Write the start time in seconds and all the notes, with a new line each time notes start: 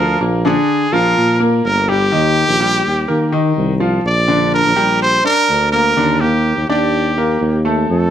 Already playing: D2 F3 F4 A#4
0.21 A#1 A#3 A#4
0.45 D3 D4 G#4
0.92 A#1 F3 F4 A#4
1.17 A#2
1.40 A#3 A#4
1.65 G1 A#4
1.89 G3 G4
2.12 D#2 D#3 D#4
2.48 A#1
2.60 G3 G4
2.86 D#2
3.08 D#3 A#3 A#4
3.32 D#3 D#4
3.57 C2
3.80 F3 F4
4.05 A#1 D5
4.28 D3 D4
4.54 A#4
4.65 A#1
4.76 A#1 G3 G4
5.02 C5
5.24 D4 A#4 D5
5.49 D2
5.72 A#3 A#4
5.97 D#2 D3 D4
6.21 A#3 G4 A#4
6.57 D#2
6.69 D#2 D4 G4 D5
7.17 A#3 A#4
7.41 D#2
7.65 A3 A4
7.89 F2 A4